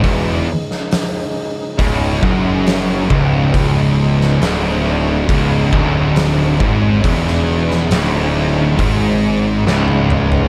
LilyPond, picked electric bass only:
\new Staff \with { instrumentName = "Picked electric bass" } { \clef bass \time 4/4 \key cis \minor \tempo 4 = 68 e,,8 r4. cis,,8 fis,,4 cis,,8 | cis,,4 d,,4 cis,,8 d,,4 gis,,8 | e,,4 d,,4 gis,,4 cis,,4 | }